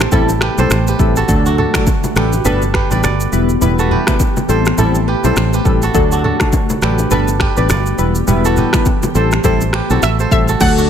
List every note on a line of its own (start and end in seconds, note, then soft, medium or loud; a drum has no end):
0.00 1.27 C3 medium
0.00 1.27 A3 medium
0.00 0.42 G4 medium
0.00 1.25 G4 medium
0.00 0.12 A4 medium
0.00 0.48 C5 medium
0.00 finger snap medium
0.00 cross-stick medium
0.00 high bongo medium
0.00 shaker medium
0.12 0.48 A1 medium
0.12 0.29 G3 loud
0.12 0.29 C4 medium
0.12 0.29 E4 medium
0.12 1.70 E4 medium
0.12 0.29 A4 loud
0.12 0.59 A4 medium
0.12 kick medium
0.12 low conga medium
0.12 shaker medium
0.29 high bongo medium
0.29 shaker medium
0.41 0.88 G4 medium
0.41 0.65 B4 medium
0.41 finger snap medium
0.41 cross-stick loud
0.58 0.68 B1 medium
0.58 0.70 G3 medium
0.58 0.70 C4 medium
0.58 0.70 E4 medium
0.58 0.70 A4 medium
0.58 1.16 A4 medium
0.58 0.94 C5 medium
0.58 low bongo medium
0.58 shaker soft
0.70 0.93 A1 medium
0.70 finger snap medium
0.70 cross-stick medium
0.70 high bongo medium
0.70 shaker medium
0.87 1.24 G4 medium
0.87 2.11 B4 medium
0.87 shaker soft
0.99 1.22 A1 loud
0.99 1.16 G3 medium
0.99 1.16 C4 medium
0.99 1.16 E4 medium
0.99 1.16 A4 medium
0.99 kick medium
0.99 shaker medium
1.16 1.46 F#4 medium
1.16 1.58 A4 medium
1.16 shaker medium
1.28 1.64 D2 loud
1.28 3.30 D3 medium
1.28 1.70 F#3 loud
1.28 1.70 A3 medium
1.28 2.44 A3 medium
1.28 1.71 D4 medium
1.28 2.44 F#4 medium
1.28 1.71 A4 loud
1.28 kick loud
1.28 low conga medium
1.28 shaker medium
1.46 2.46 D4 medium
1.46 1.59 F#4 medium
1.46 shaker soft
1.58 2.23 F#4 medium
1.58 2.45 A4 medium
1.58 low conga medium
1.74 1.87 F#3 medium
1.74 1.87 A3 medium
1.74 1.87 D4 medium
1.74 1.87 A4 medium
1.74 finger snap loud
1.74 kick medium
1.74 cross-stick loud
1.74 low bongo medium
1.74 shaker medium
1.87 kick medium
1.87 high bongo medium
1.87 shaker medium
2.04 low bongo medium
2.04 shaker medium
2.16 2.39 A1 loud
2.16 2.33 F#3 medium
2.16 2.33 A3 medium
2.16 2.33 D4 medium
2.16 2.75 G4 medium
2.16 2.33 A4 medium
2.16 2.74 B4 medium
2.16 finger snap medium
2.16 cross-stick loud
2.16 shaker medium
2.33 high bongo medium
2.33 shaker medium
2.45 2.81 G1 loud
2.45 2.62 G3 medium
2.45 2.62 B3 medium
2.45 4.47 B3 medium
2.45 2.62 D4 medium
2.45 4.14 D4 medium
2.45 3.77 A4 medium
2.45 2.62 B4 loud
2.45 low conga medium
2.45 shaker medium
2.62 high bongo medium
2.62 shaker medium
2.74 3.86 G4 medium
2.74 2.92 B4 medium
2.74 finger snap medium
2.74 kick loud
2.74 cross-stick loud
2.91 3.05 A1 medium
2.91 3.03 G3 medium
2.91 3.03 B3 medium
2.91 3.03 D4 medium
2.91 3.03 B4 medium
2.91 3.04 B4 medium
2.91 3.03 D5 medium
2.91 low bongo medium
2.91 shaker medium
3.03 3.26 G1 medium
3.03 3.91 B4 medium
3.03 4.15 D5 medium
3.03 finger snap medium
3.03 cross-stick medium
3.03 high bongo medium
3.03 shaker medium
3.20 shaker soft
3.32 3.55 E1 loud
3.32 4.48 E3 medium
3.32 3.49 G3 medium
3.32 3.49 B3 medium
3.32 3.49 E4 medium
3.32 5.92 G4 medium
3.32 3.49 B4 medium
3.32 shaker medium
3.49 shaker medium
3.61 3.98 E1 loud
3.61 4.03 G3 loud
3.61 4.04 B3 medium
3.61 4.04 E4 medium
3.61 4.04 B4 loud
3.61 low conga medium
3.61 shaker medium
3.79 3.98 F#4 medium
3.79 4.50 A4 medium
3.79 shaker soft
3.91 5.08 G4 medium
3.91 4.55 B4 medium
3.91 low conga medium
4.07 4.20 G3 medium
4.07 4.20 B3 medium
4.07 4.20 E4 medium
4.07 4.20 B4 medium
4.07 finger snap loud
4.07 kick medium
4.07 cross-stick loud
4.07 low bongo medium
4.07 shaker medium
4.20 kick medium
4.20 high bongo medium
4.20 shaker medium
4.37 low bongo medium
4.37 shaker medium
4.49 4.72 A1 loud
4.49 5.93 C3 medium
4.49 4.66 G3 medium
4.49 5.93 A3 medium
4.49 4.66 C4 medium
4.49 4.66 E4 medium
4.49 4.66 A4 medium
4.49 4.78 A4 medium
4.49 5.14 C5 medium
4.49 shaker medium
4.66 finger snap medium
4.66 cross-stick medium
4.66 high bongo medium
4.66 shaker medium
4.78 5.14 A1 medium
4.78 4.95 G3 loud
4.78 4.95 C4 medium
4.78 4.95 E4 medium
4.78 6.36 E4 medium
4.78 4.95 A4 loud
4.78 5.25 A4 medium
4.78 low conga medium
4.78 shaker medium
4.95 high bongo medium
4.95 shaker medium
5.08 5.54 G4 medium
5.08 5.31 B4 medium
5.24 5.34 B1 medium
5.24 5.36 G3 medium
5.24 5.36 C4 medium
5.24 5.36 E4 medium
5.24 5.36 A4 medium
5.24 5.83 A4 medium
5.24 5.60 C5 medium
5.24 low bongo medium
5.24 shaker medium
5.36 5.59 A1 medium
5.36 finger snap medium
5.36 cross-stick medium
5.36 high bongo medium
5.36 shaker medium
5.53 5.90 G4 medium
5.53 6.77 B4 medium
5.53 shaker soft
5.65 5.88 A1 loud
5.65 5.82 G3 medium
5.65 5.82 C4 medium
5.65 5.82 E4 medium
5.65 5.82 A4 medium
5.65 kick medium
5.65 shaker medium
5.82 6.12 F#4 medium
5.82 6.24 A4 medium
5.82 shaker medium
5.94 6.30 D2 loud
5.94 7.96 D3 medium
5.94 6.36 F#3 medium
5.94 6.36 A3 medium
5.94 7.10 A3 medium
5.94 6.37 D4 medium
5.94 7.10 F#4 medium
5.94 6.37 A4 loud
5.94 kick loud
5.94 low conga medium
5.94 shaker medium
6.12 7.12 D4 medium
6.12 6.25 F#4 medium
6.12 shaker soft
6.24 6.89 F#4 medium
6.24 7.11 A4 medium
6.24 low conga medium
6.40 6.53 F#3 medium
6.40 6.53 A3 medium
6.40 6.53 D4 medium
6.40 6.53 A4 medium
6.40 finger snap loud
6.40 kick medium
6.40 cross-stick loud
6.40 low bongo medium
6.40 shaker medium
6.53 kick loud
6.53 high bongo medium
6.53 shaker medium
6.70 low bongo medium
6.70 shaker soft
6.82 7.05 A1 loud
6.82 6.99 F#3 medium
6.82 6.99 A3 medium
6.82 6.99 D4 medium
6.82 7.41 G4 medium
6.82 6.99 A4 medium
6.82 7.40 B4 medium
6.82 finger snap medium
6.82 cross-stick loud
6.82 shaker medium
6.99 high bongo medium
6.99 shaker medium
7.11 7.47 G1 loud
7.11 7.28 G3 loud
7.11 7.28 B3 medium
7.11 9.13 B3 medium
7.11 7.28 D4 medium
7.11 8.80 D4 medium
7.11 10.57 G4 medium
7.11 8.43 A4 medium
7.11 7.28 B4 loud
7.11 low conga medium
7.11 shaker medium
7.28 high bongo medium
7.28 shaker soft
7.40 8.52 G4 medium
7.40 7.58 B4 medium
7.40 finger snap medium
7.40 kick medium
7.40 cross-stick loud
7.57 7.71 A1 medium
7.57 7.69 G3 medium
7.57 7.69 B3 medium
7.57 7.69 D4 medium
7.57 7.69 B4 medium
7.57 7.70 B4 medium
7.57 7.69 D5 medium
7.57 low bongo medium
7.57 shaker medium
7.69 7.92 G1 loud
7.69 8.57 B4 medium
7.69 8.81 D5 medium
7.69 finger snap medium
7.69 cross-stick medium
7.69 high bongo medium
7.69 shaker medium
7.86 shaker soft
7.98 8.21 E1 loud
7.98 9.14 E3 medium
7.98 8.15 G3 medium
7.98 8.15 B3 medium
7.98 8.15 E4 medium
7.98 8.15 B4 medium
7.98 shaker medium
8.15 shaker medium
8.27 8.63 E1 loud
8.27 8.69 G3 loud
8.27 8.69 B3 medium
8.27 8.70 E4 medium
8.27 8.70 B4 loud
8.27 low conga medium
8.27 shaker medium
8.45 8.64 F#4 medium
8.45 9.16 A4 medium
8.45 shaker soft
8.57 9.74 G4 medium
8.57 9.22 B4 medium
8.57 low conga medium
8.57 shaker soft
8.73 8.86 G3 medium
8.73 8.86 B3 medium
8.73 8.86 E4 medium
8.73 8.86 B4 medium
8.73 finger snap loud
8.73 kick loud
8.73 cross-stick loud
8.73 low bongo medium
8.73 shaker medium
8.86 kick medium
8.86 high bongo medium
8.86 shaker medium
9.03 low bongo medium
9.03 shaker soft
9.15 9.38 A1 loud
9.15 10.59 C3 medium
9.15 9.32 G3 medium
9.15 10.59 A3 medium
9.15 9.32 C4 medium
9.15 9.32 E4 medium
9.15 9.32 A4 medium
9.15 9.45 A4 medium
9.15 9.44 C5 medium
9.15 shaker medium
9.32 finger snap medium
9.32 cross-stick medium
9.32 high bongo medium
9.32 shaker medium
9.44 9.80 A1 medium
9.44 9.61 G3 loud
9.44 9.61 C4 medium
9.44 9.61 E4 medium
9.44 9.61 A4 loud
9.44 9.90 A4 medium
9.44 9.80 C5 medium
9.44 kick medium
9.44 low conga medium
9.44 shaker medium
9.61 high bongo medium
9.61 shaker medium
9.73 9.97 G4 medium
9.73 10.26 B4 medium
9.73 finger snap medium
9.73 cross-stick loud
9.90 10.00 B1 medium
9.90 10.02 G3 medium
9.90 10.02 C4 medium
9.90 10.02 E4 medium
9.90 10.49 F#4 medium
9.90 10.02 A4 medium
9.90 10.20 A4 medium
9.90 low bongo medium
9.90 shaker soft
10.02 10.25 A1 medium
10.02 10.31 E5 loud
10.02 finger snap medium
10.02 cross-stick medium
10.02 high bongo medium
10.02 shaker medium
10.19 10.49 A4 medium
10.19 10.90 C5 medium
10.19 shaker soft
10.31 10.54 A1 loud
10.31 10.48 G3 medium
10.31 10.48 C4 medium
10.31 10.48 E4 medium
10.31 10.48 A4 medium
10.31 10.62 E5 medium
10.31 kick loud
10.31 shaker medium
10.48 10.78 F#4 medium
10.48 10.90 A4 medium
10.48 shaker medium
10.60 10.90 D2 loud
10.60 10.90 D3 medium
10.60 10.90 F#3 loud
10.60 10.90 A3 medium
10.60 10.90 D4 medium
10.60 10.90 F#4 medium
10.60 10.90 A4 loud
10.60 10.90 F#5 loud
10.60 kick loud
10.60 crash loud
10.60 low conga medium
10.60 shaker medium
10.78 10.90 D4 medium
10.78 10.90 F#4 medium
10.78 shaker soft